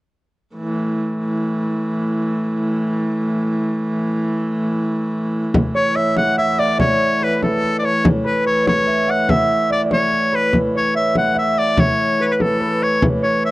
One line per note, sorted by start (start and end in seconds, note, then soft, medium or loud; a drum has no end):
0.56 5.55 A2 medium
0.56 5.54 E3 medium
5.54 10.53 A2 medium
5.54 10.53 E3 medium
5.54 frame drum medium
5.75 6.65 C#5 medium
5.75 5.98 C#5 medium
5.96 6.37 E5 medium
5.96 6.17 E5 medium
6.16 7.77 F#5 medium
6.16 6.37 F#5 medium
6.16 frame drum medium
6.38 8.10 E5 medium
6.38 6.61 E5 loud
6.38 frame drum soft
6.59 6.84 D5 medium
6.59 6.80 D5 medium
6.78 7.82 C#5 medium
6.78 7.25 C#5 medium
6.78 frame drum medium
7.21 8.24 B4 medium
7.21 7.43 B4 medium
7.42 9.61 A4 medium
7.42 7.77 A4 medium
7.42 frame drum medium
7.64 frame drum soft
7.79 8.45 C#5 medium
7.79 7.87 D5 medium
7.86 8.06 C#5 medium
8.05 frame drum medium
8.24 10.29 B4 medium
8.24 8.45 B4 medium
8.46 8.66 C#5 medium
8.66 9.76 C#5 medium
8.66 9.12 C#5 medium
8.66 frame drum medium
8.86 9.29 E5 medium
8.86 frame drum soft
9.07 10.68 F#5 medium
9.07 9.31 F#5 medium
9.29 10.94 E5 medium
9.29 9.71 E5 medium
9.29 frame drum medium
9.50 frame drum soft
9.70 9.84 D5 medium
9.70 9.81 D5 medium
9.70 frame drum soft
9.85 9.96 D5 medium
9.90 10.74 C#5 medium
9.90 10.37 C#5 medium
9.90 frame drum medium
10.12 frame drum soft
10.32 12.19 B4 medium
10.32 10.55 B4 medium
10.53 13.51 A2 medium
10.53 13.51 E3 medium
10.53 frame drum medium
10.75 11.77 C#5 medium
10.75 10.95 C#5 medium
10.94 11.35 E5 medium
10.94 11.15 E5 medium
11.15 12.76 F#5 medium
11.15 11.36 F#5 medium
11.15 frame drum medium
11.35 13.07 E5 medium
11.35 11.60 E5 medium
11.35 frame drum soft
11.59 11.82 D5 medium
11.77 12.81 C#5 medium
11.77 12.23 C#5 medium
11.77 frame drum medium
12.19 12.60 B4 medium
12.19 12.26 B4 medium
12.24 12.33 C#5 medium
12.31 12.33 B4 medium
12.31 12.43 B4 soft
12.39 13.51 A4 medium
12.39 12.85 A4 medium
12.39 frame drum medium
12.60 13.51 B4 medium
12.60 frame drum soft
12.81 13.22 C#5 medium
12.81 13.03 C#5 medium
13.02 frame drum medium
13.23 13.51 C#5 medium
13.23 13.43 C#5 medium
13.45 13.51 E5 medium